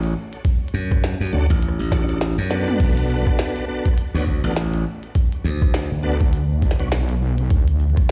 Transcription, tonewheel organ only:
0, 0, Header, 1, 2, 480
1, 0, Start_track
1, 0, Key_signature, 2, "minor"
1, 0, Tempo, 588235
1, 365, Time_signature, 4, 2, 24, 8
1, 6619, End_track
2, 0, Start_track
2, 0, Title_t, "Tonewheel organ"
2, 0, Program_c, 0, 16
2, 1081, Note_on_c, 0, 66, 92
2, 1082, Note_on_c, 0, 61, 97
2, 1082, Note_on_c, 0, 62, 88
2, 1082, Note_on_c, 0, 69, 105
2, 1195, Note_off_c, 0, 66, 0
2, 1196, Note_off_c, 0, 61, 0
2, 1196, Note_off_c, 0, 62, 0
2, 1196, Note_off_c, 0, 69, 0
2, 1561, Note_on_c, 0, 61, 102
2, 1561, Note_on_c, 0, 62, 89
2, 1562, Note_on_c, 0, 66, 91
2, 1562, Note_on_c, 0, 69, 111
2, 1675, Note_off_c, 0, 61, 0
2, 1675, Note_off_c, 0, 62, 0
2, 1676, Note_off_c, 0, 66, 0
2, 1676, Note_off_c, 0, 69, 0
2, 1701, Note_on_c, 0, 61, 79
2, 1701, Note_on_c, 0, 66, 73
2, 1702, Note_on_c, 0, 62, 73
2, 1702, Note_on_c, 0, 69, 87
2, 1783, Note_off_c, 0, 61, 0
2, 1783, Note_off_c, 0, 62, 0
2, 1783, Note_off_c, 0, 66, 0
2, 1783, Note_off_c, 0, 69, 0
2, 2041, Note_on_c, 0, 62, 89
2, 2041, Note_on_c, 0, 66, 89
2, 2041, Note_on_c, 0, 69, 101
2, 2042, Note_on_c, 0, 59, 93
2, 2979, Note_off_c, 0, 59, 0
2, 2979, Note_off_c, 0, 62, 0
2, 2979, Note_off_c, 0, 66, 0
2, 2979, Note_off_c, 0, 69, 0
2, 3002, Note_on_c, 0, 66, 73
2, 3003, Note_on_c, 0, 59, 76
2, 3003, Note_on_c, 0, 62, 70
2, 3003, Note_on_c, 0, 69, 85
2, 3172, Note_off_c, 0, 59, 0
2, 3172, Note_off_c, 0, 62, 0
2, 3172, Note_off_c, 0, 66, 0
2, 3172, Note_off_c, 0, 69, 0
2, 3385, Note_on_c, 0, 59, 87
2, 3385, Note_on_c, 0, 62, 81
2, 3385, Note_on_c, 0, 66, 83
2, 3385, Note_on_c, 0, 73, 99
2, 3464, Note_off_c, 0, 59, 0
2, 3464, Note_off_c, 0, 62, 0
2, 3464, Note_off_c, 0, 66, 0
2, 3464, Note_off_c, 0, 73, 0
2, 3622, Note_on_c, 0, 59, 92
2, 3622, Note_on_c, 0, 62, 86
2, 3622, Note_on_c, 0, 66, 89
2, 3622, Note_on_c, 0, 69, 102
2, 3703, Note_off_c, 0, 59, 0
2, 3703, Note_off_c, 0, 62, 0
2, 3703, Note_off_c, 0, 66, 0
2, 3703, Note_off_c, 0, 69, 0
2, 4921, Note_on_c, 0, 59, 102
2, 4921, Note_on_c, 0, 62, 88
2, 4921, Note_on_c, 0, 66, 90
2, 4922, Note_on_c, 0, 69, 112
2, 5035, Note_off_c, 0, 59, 0
2, 5035, Note_off_c, 0, 62, 0
2, 5035, Note_off_c, 0, 66, 0
2, 5036, Note_off_c, 0, 69, 0
2, 5541, Note_on_c, 0, 62, 77
2, 5541, Note_on_c, 0, 66, 78
2, 5541, Note_on_c, 0, 73, 91
2, 5542, Note_on_c, 0, 59, 82
2, 5622, Note_off_c, 0, 62, 0
2, 5622, Note_off_c, 0, 66, 0
2, 5623, Note_off_c, 0, 59, 0
2, 5623, Note_off_c, 0, 73, 0
2, 6619, End_track
0, 0, End_of_file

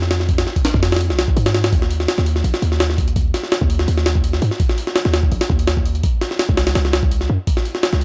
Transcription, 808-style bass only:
0, 0, Header, 1, 2, 480
1, 0, Start_track
1, 0, Tempo, 359281
1, 385, Time_signature, 4, 2, 24, 8
1, 10748, End_track
2, 0, Start_track
2, 0, Title_t, "808-style bass"
2, 0, Program_c, 0, 38
2, 0, Note_on_c, 0, 41, 90
2, 606, Note_off_c, 0, 41, 0
2, 990, Note_on_c, 0, 41, 105
2, 1472, Note_on_c, 0, 36, 89
2, 1492, Note_off_c, 0, 41, 0
2, 1807, Note_off_c, 0, 36, 0
2, 1825, Note_on_c, 0, 44, 94
2, 2304, Note_on_c, 0, 39, 97
2, 2324, Note_off_c, 0, 44, 0
2, 2766, Note_off_c, 0, 39, 0
2, 2911, Note_on_c, 0, 39, 103
2, 3247, Note_off_c, 0, 39, 0
2, 3262, Note_on_c, 0, 34, 99
2, 3378, Note_off_c, 0, 34, 0
2, 3502, Note_on_c, 0, 39, 86
2, 4446, Note_off_c, 0, 39, 0
2, 4828, Note_on_c, 0, 39, 103
2, 5165, Note_off_c, 0, 39, 0
2, 5183, Note_on_c, 0, 39, 98
2, 5886, Note_off_c, 0, 39, 0
2, 5904, Note_on_c, 0, 44, 98
2, 6018, Note_off_c, 0, 44, 0
2, 6752, Note_on_c, 0, 39, 106
2, 7087, Note_off_c, 0, 39, 0
2, 7105, Note_on_c, 0, 34, 94
2, 7219, Note_off_c, 0, 34, 0
2, 7343, Note_on_c, 0, 39, 91
2, 8046, Note_off_c, 0, 39, 0
2, 8669, Note_on_c, 0, 37, 102
2, 9005, Note_off_c, 0, 37, 0
2, 9026, Note_on_c, 0, 37, 100
2, 9727, Note_off_c, 0, 37, 0
2, 9747, Note_on_c, 0, 42, 98
2, 9860, Note_off_c, 0, 42, 0
2, 10591, Note_on_c, 0, 37, 105
2, 10748, Note_off_c, 0, 37, 0
2, 10748, End_track
0, 0, End_of_file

